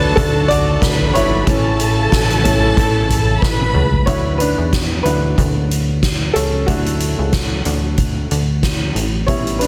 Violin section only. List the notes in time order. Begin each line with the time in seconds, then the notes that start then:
Already playing: A4 A5
0.81 B4 B5
1.46 A4 A5
3.41 B4 B5